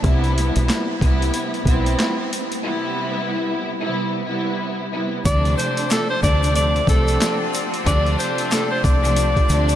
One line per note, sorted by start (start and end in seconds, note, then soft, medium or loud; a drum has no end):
0.01 0.50 C2 loud
0.01 0.94 C3 loud
0.01 0.94 G3 medium
0.01 0.94 B3 medium
0.01 0.95 E4 loud
0.01 kick loud
0.01 closed hi-hat medium
0.24 closed hi-hat soft
0.38 closed hi-hat medium
0.56 0.68 B1 medium
0.56 closed hi-hat medium
0.69 snare loud
0.69 clap medium
0.69 closed hi-hat loud
1.01 1.30 C2 medium
1.01 1.63 C3 loud
1.01 1.63 G3 medium
1.01 1.63 B3 medium
1.01 1.63 E4 loud
1.01 kick loud
1.01 closed hi-hat medium
1.22 closed hi-hat soft
1.34 closed hi-hat medium
1.54 closed hi-hat soft
1.65 1.95 B1 medium
1.65 2.44 G3 medium
1.65 2.44 B3 loud
1.65 2.44 C4 loud
1.65 2.44 E4 loud
1.65 kick loud
1.65 closed hi-hat medium
1.86 closed hi-hat soft
1.99 snare loud
1.99 clap medium
1.99 closed hi-hat medium
2.33 closed hi-hat medium
2.52 closed hi-hat soft
2.63 3.70 C3 loud
2.63 3.70 G3 medium
2.63 3.70 B3 medium
2.63 3.70 E4 loud
3.82 4.24 C3 medium
3.82 4.24 G3 medium
3.82 4.24 B3 medium
3.82 4.25 E4 loud
4.27 4.88 C3 medium
4.27 4.89 G3 medium
4.27 4.89 B3 medium
4.27 4.89 E4 loud
4.93 5.24 C3 medium
4.93 5.24 G3 medium
4.93 5.24 B3 medium
4.93 5.24 E4 medium
5.25 5.54 D2 loud
5.25 6.17 C3 loud
5.25 6.17 F3 medium
5.25 6.17 A3 medium
5.25 6.17 D4 loud
5.25 5.55 D5 loud
5.25 kick loud
5.25 closed hi-hat medium
5.25 shaker medium
5.45 closed hi-hat soft
5.57 5.87 C5 medium
5.57 closed hi-hat medium
5.57 shaker medium
5.77 closed hi-hat medium
5.90 6.09 A4 medium
5.90 snare loud
5.90 clap medium
5.90 closed hi-hat loud
5.90 shaker medium
6.10 6.22 C5 medium
6.23 6.80 D2 medium
6.23 6.84 C3 loud
6.23 6.84 F3 medium
6.23 6.84 A3 medium
6.23 6.84 D4 loud
6.23 6.52 D5 medium
6.23 kick loud
6.23 closed hi-hat medium
6.23 shaker soft
6.43 closed hi-hat medium
6.43 shaker medium
6.55 9.76 D3 medium
6.55 9.76 C4 medium
6.55 9.76 F4 medium
6.55 6.85 D5 medium
6.55 closed hi-hat medium
6.55 shaker medium
6.76 closed hi-hat soft
6.87 7.17 C2 medium
6.87 7.66 C3 loud
6.87 7.66 F3 medium
6.87 7.66 A3 loud
6.87 7.66 D4 loud
6.87 7.38 A4 medium
6.87 kick loud
6.87 closed hi-hat medium
6.87 shaker medium
7.08 closed hi-hat soft
7.08 shaker medium
7.21 snare loud
7.21 clap medium
7.21 closed hi-hat loud
7.21 shaker medium
7.54 closed hi-hat medium
7.54 shaker medium
7.74 closed hi-hat soft
7.86 8.15 D2 loud
7.86 8.93 C3 loud
7.86 8.93 F3 loud
7.86 8.93 A3 medium
7.86 8.93 D4 loud
7.86 8.16 D5 loud
7.86 kick loud
7.86 closed hi-hat medium
7.86 shaker medium
8.06 closed hi-hat soft
8.19 8.48 C5 medium
8.19 closed hi-hat medium
8.19 shaker medium
8.38 closed hi-hat medium
8.51 8.70 A4 medium
8.51 snare loud
8.51 clap medium
8.51 closed hi-hat loud
8.51 shaker medium
8.71 8.83 C5 medium
8.84 9.41 C2 medium
8.84 9.76 D5 medium
8.84 kick loud
8.84 closed hi-hat medium
8.84 shaker soft
9.03 9.46 C3 medium
9.03 9.46 F3 medium
9.03 9.46 A3 medium
9.03 9.46 D4 loud
9.03 closed hi-hat medium
9.03 shaker medium
9.16 closed hi-hat medium
9.16 shaker medium
9.36 kick medium
9.36 closed hi-hat soft
9.48 9.76 D2 loud
9.48 9.76 C3 medium
9.48 9.76 F3 medium
9.48 9.76 A3 medium
9.48 9.76 D4 loud
9.48 closed hi-hat medium
9.48 shaker medium
9.69 closed hi-hat soft
9.69 shaker medium